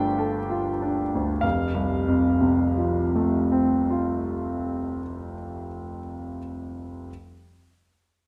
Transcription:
0, 0, Header, 1, 2, 480
1, 0, Start_track
1, 0, Key_signature, -1, "major"
1, 0, Tempo, 1244813
1, 553, Time_signature, 6, 3, 24, 8
1, 553, Tempo, 1178782
1, 1513, Tempo, 1121495
1, 3432, End_track
2, 0, Start_track
2, 0, Title_t, "Grand piano"
2, 0, Program_c, 0, 0
2, 0, Control_c, 0, 64, 127
2, 0, Note_on_c, 0, 31, 55
2, 0, Note_on_c, 0, 38, 34
2, 0, Note_on_c, 0, 58, 40
2, 0, Note_on_c, 0, 62, 37
2, 0, Note_on_c, 0, 65, 42
2, 0, Note_on_c, 0, 67, 50
2, 0, Note_on_c, 0, 69, 37
2, 0, Note_on_c, 0, 72, 64
2, 0, Note_on_c, 0, 79, 68
2, 0, Note_on_c, 0, 84, 91
2, 72, Note_off_c, 0, 69, 0
2, 72, Note_on_c, 0, 69, 38
2, 146, Note_off_c, 0, 62, 0
2, 192, Note_off_c, 0, 65, 0
2, 192, Note_on_c, 0, 65, 35
2, 266, Note_off_c, 0, 69, 0
2, 317, Note_on_c, 0, 62, 38
2, 391, Note_off_c, 0, 65, 0
2, 443, Note_off_c, 0, 38, 0
2, 443, Note_on_c, 0, 38, 29
2, 509, Note_off_c, 0, 62, 0
2, 538, Note_off_c, 0, 31, 0
2, 539, Note_off_c, 0, 67, 0
2, 544, Note_on_c, 0, 77, 54
2, 550, Note_off_c, 0, 79, 0
2, 552, Note_on_c, 0, 29, 43
2, 555, Note_off_c, 0, 38, 0
2, 562, Control_c, 0, 64, 0
2, 563, Note_off_c, 0, 84, 0
2, 565, Note_off_c, 0, 72, 0
2, 566, Note_off_c, 0, 58, 0
2, 644, Control_c, 0, 64, 127
2, 679, Note_on_c, 0, 36, 40
2, 816, Note_on_c, 0, 41, 41
2, 950, Note_on_c, 0, 48, 36
2, 1099, Note_on_c, 0, 53, 37
2, 1254, Note_on_c, 0, 57, 34
2, 1401, Note_on_c, 0, 60, 36
2, 1561, Note_on_c, 0, 65, 34
2, 2029, Note_off_c, 0, 77, 0
2, 2037, Note_off_c, 0, 29, 0
2, 2171, Note_off_c, 0, 36, 0
2, 2315, Note_off_c, 0, 41, 0
2, 2456, Note_off_c, 0, 48, 0
2, 2612, Note_off_c, 0, 53, 0
2, 2624, Note_off_c, 0, 60, 0
2, 2625, Note_off_c, 0, 65, 0
2, 2626, Note_off_c, 0, 57, 0
2, 2928, Control_c, 0, 64, 0
2, 3432, End_track
0, 0, End_of_file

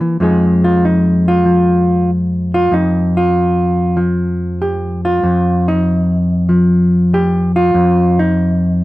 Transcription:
0, 0, Header, 1, 2, 480
1, 0, Start_track
1, 0, Key_signature, -4, "minor"
1, 0, Tempo, 628009
1, 157, Time_signature, 4, 2, 24, 8
1, 6758, End_track
2, 0, Start_track
2, 0, Title_t, "Hollow-body jazz guitar"
2, 0, Program_c, 0, 26
2, 0, Note_on_c, 0, 58, 50
2, 0, Note_on_c, 0, 64, 71
2, 5, Note_on_c, 0, 52, 56
2, 141, Note_off_c, 0, 58, 0
2, 154, Note_on_c, 0, 41, 73
2, 156, Note_off_c, 0, 52, 0
2, 158, Note_off_c, 0, 64, 0
2, 161, Note_on_c, 0, 53, 49
2, 169, Note_on_c, 0, 56, 49
2, 172, Note_on_c, 0, 63, 49
2, 179, Note_on_c, 0, 68, 50
2, 489, Note_off_c, 0, 68, 0
2, 492, Note_on_c, 0, 65, 81
2, 640, Note_off_c, 0, 65, 0
2, 646, Note_off_c, 0, 63, 0
2, 649, Note_on_c, 0, 63, 78
2, 972, Note_off_c, 0, 63, 0
2, 979, Note_on_c, 0, 65, 85
2, 1110, Note_off_c, 0, 53, 0
2, 1113, Note_on_c, 0, 53, 59
2, 1603, Note_off_c, 0, 65, 0
2, 1944, Note_on_c, 0, 65, 92
2, 2073, Note_off_c, 0, 41, 0
2, 2076, Note_on_c, 0, 41, 75
2, 2086, Note_off_c, 0, 65, 0
2, 2092, Note_on_c, 0, 63, 83
2, 2115, Note_off_c, 0, 53, 0
2, 2413, Note_off_c, 0, 63, 0
2, 2423, Note_on_c, 0, 65, 83
2, 3032, Note_on_c, 0, 53, 62
2, 3045, Note_off_c, 0, 65, 0
2, 3529, Note_on_c, 0, 67, 73
2, 3851, Note_off_c, 0, 67, 0
2, 3860, Note_on_c, 0, 65, 84
2, 3997, Note_off_c, 0, 41, 0
2, 4000, Note_on_c, 0, 41, 77
2, 4002, Note_off_c, 0, 56, 0
2, 4333, Note_off_c, 0, 65, 0
2, 4343, Note_on_c, 0, 63, 84
2, 4366, Note_off_c, 0, 53, 0
2, 4960, Note_on_c, 0, 53, 59
2, 4965, Note_off_c, 0, 63, 0
2, 5458, Note_on_c, 0, 67, 87
2, 5775, Note_off_c, 0, 67, 0
2, 5778, Note_on_c, 0, 65, 89
2, 5909, Note_off_c, 0, 41, 0
2, 5918, Note_on_c, 0, 41, 76
2, 6252, Note_off_c, 0, 65, 0
2, 6262, Note_on_c, 0, 63, 83
2, 6285, Note_off_c, 0, 53, 0
2, 6758, Note_off_c, 0, 41, 0
2, 6758, Note_off_c, 0, 63, 0
2, 6758, End_track
0, 0, End_of_file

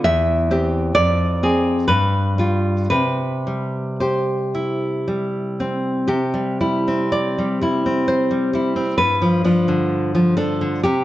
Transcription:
0, 0, Header, 1, 2, 480
1, 0, Start_track
1, 0, Key_signature, 0, "major"
1, 0, Tempo, 920245
1, 32, Time_signature, 3, 2, 24, 8
1, 993, Tempo, 1013514
1, 1473, Tempo, 1081081
1, 2433, Tempo, 1022147
1, 3393, Tempo, 936037
1, 5403, End_track
2, 0, Start_track
2, 0, Title_t, "Nylon-string guitar"
2, 0, Program_c, 0, 24
2, 22, Note_on_c, 0, 76, 77
2, 27, Note_on_c, 0, 40, 57
2, 265, Note_on_c, 0, 60, 41
2, 267, Note_on_c, 0, 67, 45
2, 480, Note_off_c, 0, 76, 0
2, 482, Note_off_c, 0, 60, 0
2, 483, Note_off_c, 0, 67, 0
2, 487, Note_off_c, 0, 40, 0
2, 494, Note_on_c, 0, 74, 73
2, 495, Note_on_c, 0, 41, 55
2, 746, Note_on_c, 0, 60, 40
2, 748, Note_on_c, 0, 68, 42
2, 968, Note_off_c, 0, 74, 0
2, 972, Note_off_c, 0, 60, 0
2, 973, Note_off_c, 0, 68, 0
2, 974, Note_off_c, 0, 41, 0
2, 979, Note_on_c, 0, 71, 60
2, 985, Note_on_c, 0, 43, 51
2, 1219, Note_on_c, 0, 55, 36
2, 1224, Note_on_c, 0, 65, 41
2, 1448, Note_off_c, 0, 71, 0
2, 1451, Note_off_c, 0, 55, 0
2, 1454, Note_off_c, 0, 65, 0
2, 1455, Note_off_c, 0, 43, 0
2, 1465, Note_on_c, 0, 71, 61
2, 1470, Note_on_c, 0, 48, 44
2, 1717, Note_on_c, 0, 55, 32
2, 1933, Note_off_c, 0, 71, 0
2, 1955, Note_on_c, 0, 72, 42
2, 1959, Note_on_c, 0, 67, 34
2, 2196, Note_on_c, 0, 64, 30
2, 2426, Note_off_c, 0, 55, 0
2, 2431, Note_on_c, 0, 55, 32
2, 2660, Note_off_c, 0, 72, 0
2, 2677, Note_on_c, 0, 60, 30
2, 2680, Note_off_c, 0, 67, 0
2, 2892, Note_off_c, 0, 48, 0
2, 2901, Note_on_c, 0, 67, 59
2, 2904, Note_on_c, 0, 48, 50
2, 2912, Note_off_c, 0, 55, 0
2, 2912, Note_off_c, 0, 60, 0
2, 2913, Note_off_c, 0, 64, 0
2, 3023, Note_on_c, 0, 55, 35
2, 3144, Note_off_c, 0, 55, 0
2, 3150, Note_on_c, 0, 55, 34
2, 3150, Note_on_c, 0, 64, 38
2, 3277, Note_on_c, 0, 60, 34
2, 3367, Note_off_c, 0, 67, 0
2, 3391, Note_on_c, 0, 74, 59
2, 3520, Note_off_c, 0, 55, 0
2, 3526, Note_on_c, 0, 55, 36
2, 3638, Note_off_c, 0, 55, 0
2, 3643, Note_off_c, 0, 64, 0
2, 3644, Note_on_c, 0, 55, 31
2, 3649, Note_on_c, 0, 64, 39
2, 3763, Note_off_c, 0, 60, 0
2, 3770, Note_on_c, 0, 60, 34
2, 3862, Note_off_c, 0, 74, 0
2, 3882, Note_on_c, 0, 72, 50
2, 3994, Note_off_c, 0, 55, 0
2, 4000, Note_on_c, 0, 55, 36
2, 4110, Note_off_c, 0, 55, 0
2, 4116, Note_on_c, 0, 55, 36
2, 4117, Note_off_c, 0, 64, 0
2, 4123, Note_on_c, 0, 64, 38
2, 4226, Note_off_c, 0, 60, 0
2, 4232, Note_on_c, 0, 60, 35
2, 4321, Note_off_c, 0, 48, 0
2, 4326, Note_off_c, 0, 55, 0
2, 4327, Note_off_c, 0, 72, 0
2, 4330, Note_off_c, 0, 64, 0
2, 4343, Note_on_c, 0, 71, 63
2, 4344, Note_on_c, 0, 43, 46
2, 4347, Note_off_c, 0, 60, 0
2, 4466, Note_on_c, 0, 53, 38
2, 4577, Note_off_c, 0, 53, 0
2, 4583, Note_on_c, 0, 53, 36
2, 4585, Note_on_c, 0, 62, 36
2, 4704, Note_on_c, 0, 50, 36
2, 4937, Note_off_c, 0, 53, 0
2, 4943, Note_on_c, 0, 53, 38
2, 5049, Note_off_c, 0, 71, 0
2, 5053, Note_off_c, 0, 53, 0
2, 5054, Note_off_c, 0, 62, 0
2, 5056, Note_on_c, 0, 69, 54
2, 5059, Note_on_c, 0, 53, 34
2, 5061, Note_on_c, 0, 62, 38
2, 5175, Note_off_c, 0, 50, 0
2, 5181, Note_on_c, 0, 50, 37
2, 5286, Note_off_c, 0, 53, 0
2, 5287, Note_off_c, 0, 62, 0
2, 5291, Note_off_c, 0, 43, 0
2, 5294, Note_off_c, 0, 69, 0
2, 5296, Note_on_c, 0, 67, 56
2, 5300, Note_off_c, 0, 50, 0
2, 5302, Note_on_c, 0, 48, 45
2, 5403, Note_off_c, 0, 48, 0
2, 5403, Note_off_c, 0, 67, 0
2, 5403, End_track
0, 0, End_of_file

